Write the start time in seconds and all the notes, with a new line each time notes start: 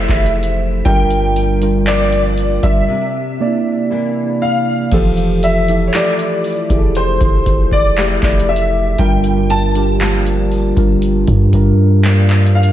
Already playing: F3 A3 E4 G4 C5 E5
0.09 F1, kick, clap, closed hi-hat
0.26 closed hi-hat
0.43 closed hi-hat
0.85 G1 G2 G3 D4 F4 A#4 G5, kick, closed hi-hat
1.11 closed hi-hat
1.36 closed hi-hat
1.61 G3 D4 F4 A#4, closed hi-hat
1.87 F3 A#3 D4 D5, clap, closed hi-hat
2.13 closed hi-hat
2.38 closed hi-hat
2.63 G1 G3 D4 F4 A#4 E5, kick, closed hi-hat
2.88 C3
3.40 C3 A#3 D4 D5
3.47 E4
3.90 E3 A#3 D4
4.42 F5
4.92 F1 E3 F3 G4 A4, kick, closed hi-hat, crash
5.17 closed hi-hat
5.43 E5, closed hi-hat
5.68 F3 E4 G4 A4, closed hi-hat
5.87 C#5
5.94 A3 E4 G4 D5, clap, closed hi-hat
6.19 closed hi-hat
6.44 open hi-hat
6.70 F1 F3 E4 G4 G#4, kick, closed hi-hat
6.78 A4
6.95 C5, closed hi-hat
7.21 F1, kick, closed hi-hat
7.46 kick, closed hi-hat
7.71 D5, kick
7.97 A3 E4 G4, clap, closed hi-hat
8.22 F1, kick, clap, closed hi-hat
8.39 closed hi-hat
8.49 E5
8.56 closed hi-hat
8.98 G1 G2 G3 D4 F4 A#4 G5, kick, closed hi-hat
9.24 closed hi-hat
9.50 A5, closed hi-hat
9.75 G3 D4 F4 G4, closed hi-hat
10.00 F3 A#3 D4, clap, closed hi-hat
10.26 closed hi-hat
10.51 open hi-hat
10.77 G1 G3 D4 F4 A#4, kick, closed hi-hat
11.02 closed hi-hat
11.27 G2, kick, closed hi-hat
11.53 G3 D4 F4 A#4, kick, closed hi-hat
12.04 F3 A#3 D4, clap, closed hi-hat
12.29 clap, closed hi-hat
12.46 closed hi-hat
12.55 F5
12.63 closed hi-hat